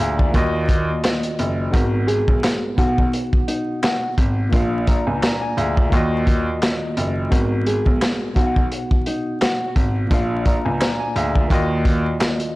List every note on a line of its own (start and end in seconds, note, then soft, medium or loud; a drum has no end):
0.00 0.26 D2 medium
0.00 0.29 A#2 medium
0.00 0.30 A#3 medium
0.00 0.31 D4 medium
0.00 0.20 F4 medium
0.00 0.18 G#4 medium
0.00 0.19 D5 medium
0.00 0.36 F5 medium
0.00 0.36 G#5 medium
0.00 0.36 A#5 medium
0.00 closed hi-hat medium
0.19 0.33 F4 medium
0.19 0.52 D5 medium
0.19 kick medium
0.31 0.88 D#2 loud
0.31 1.69 D#3 medium
0.31 1.70 A#3 medium
0.31 1.71 F4 medium
0.31 kick medium
0.31 closed hi-hat medium
0.36 1.72 F#4 medium
0.36 1.73 D#5 loud
0.69 kick medium
0.69 closed hi-hat medium
1.04 snare loud
1.04 clap medium
1.04 closed hi-hat loud
1.23 closed hi-hat medium
1.39 1.66 F#1 medium
1.39 closed hi-hat medium
1.71 2.16 G#1 loud
1.71 2.77 G#2 medium
1.71 2.77 G#3 medium
1.71 2.75 B3 medium
1.71 2.78 F#4 medium
1.71 2.78 A#4 loud
1.71 kick loud
1.71 closed hi-hat medium
2.07 2.74 G#4 medium
2.07 closed hi-hat medium
2.28 2.40 B1 medium
2.28 kick loud
2.44 snare loud
2.44 clap loud
2.44 closed hi-hat loud
2.75 3.05 B1 loud
2.75 4.47 B2 medium
2.75 4.48 B3 medium
2.75 4.49 D#4 medium
2.75 3.44 F#4 medium
2.75 kick loud
2.75 closed hi-hat medium
2.80 4.50 F#4 medium
2.80 2.87 F5 medium
2.88 4.54 F#5 medium
2.98 kick medium
3.13 closed hi-hat medium
3.33 kick loud
3.48 3.79 D#4 medium
3.48 closed hi-hat medium
3.83 4.14 F#4 medium
3.83 snare loud
3.83 clap medium
3.83 closed hi-hat medium
4.18 4.45 G#1 medium
4.18 kick medium
4.18 closed hi-hat medium
4.49 5.87 A#2 medium
4.49 5.88 A#3 medium
4.49 5.89 D4 medium
4.49 kick loud
4.49 closed hi-hat medium
4.53 4.95 A#1 loud
4.53 4.87 F4 medium
4.53 4.88 F5 medium
4.87 5.07 D5 medium
4.87 5.07 A#5 medium
4.87 kick medium
4.87 closed hi-hat medium
5.07 5.19 C#2 medium
5.07 5.21 G#5 medium
5.23 5.41 D5 medium
5.23 5.41 A#5 medium
5.23 snare loud
5.23 clap medium
5.23 closed hi-hat loud
5.42 5.56 G#5 medium
5.57 5.84 D2 loud
5.57 5.76 G#4 medium
5.57 5.76 F5 medium
5.57 closed hi-hat medium
5.77 5.91 F4 medium
5.77 6.10 D5 medium
5.77 kick medium
5.89 6.46 D#2 loud
5.89 7.27 D#3 medium
5.89 7.28 A#3 medium
5.89 7.29 F4 medium
5.89 kick medium
5.89 closed hi-hat medium
5.94 7.30 F#4 medium
5.94 7.31 D#5 loud
6.27 kick medium
6.27 closed hi-hat medium
6.62 snare loud
6.62 clap loud
6.62 closed hi-hat medium
6.97 7.24 F#1 medium
6.97 closed hi-hat medium
7.29 7.74 G#1 loud
7.29 8.35 G#2 medium
7.29 8.35 G#3 medium
7.29 8.34 B3 medium
7.29 8.36 F#4 medium
7.29 8.37 A#4 medium
7.29 kick loud
7.29 closed hi-hat medium
7.66 8.32 G#4 medium
7.66 closed hi-hat medium
7.86 7.98 B1 medium
7.86 kick loud
8.02 snare loud
8.02 clap medium
8.02 closed hi-hat loud
8.33 8.63 B1 medium
8.33 10.06 B2 medium
8.33 10.06 B3 medium
8.33 10.07 D#4 medium
8.33 9.02 F#4 medium
8.33 kick loud
8.33 closed hi-hat medium
8.38 10.08 F#4 medium
8.38 8.45 F5 medium
8.47 10.12 F#5 medium
8.56 kick medium
8.72 closed hi-hat medium
8.91 kick loud
9.06 9.38 D#4 medium
9.06 closed hi-hat medium
9.41 9.73 F#4 medium
9.41 snare loud
9.41 clap medium
9.41 closed hi-hat loud
9.76 10.03 G#1 medium
9.76 kick medium
9.76 closed hi-hat medium
10.07 11.46 A#2 medium
10.07 11.46 A#3 medium
10.07 11.47 D4 medium
10.07 kick loud
10.11 10.53 A#1 loud
10.11 10.46 F4 medium
10.11 10.47 F5 medium
10.11 closed hi-hat medium
10.45 10.65 D5 medium
10.45 10.65 A#5 medium
10.45 kick medium
10.45 closed hi-hat medium
10.65 10.77 C#2 medium
10.65 10.80 G#5 medium
10.81 11.00 D5 medium
10.81 11.00 A#5 medium
10.81 snare loud
10.81 clap loud
10.81 closed hi-hat loud
11.00 11.15 G#5 medium
11.16 11.43 D2 loud
11.16 11.35 G#4 medium
11.16 11.34 F5 medium
11.16 closed hi-hat medium
11.35 11.49 F4 medium
11.35 11.68 D5 medium
11.35 kick medium
11.47 12.05 D#2 loud
11.47 12.56 D#3 medium
11.47 12.56 A#3 medium
11.47 12.56 F4 medium
11.47 kick medium
11.47 closed hi-hat medium
11.52 12.56 F#4 medium
11.52 12.56 D#5 loud
11.85 kick medium
11.85 closed hi-hat medium
12.20 snare loud
12.20 clap medium
12.20 closed hi-hat medium
12.40 closed hi-hat medium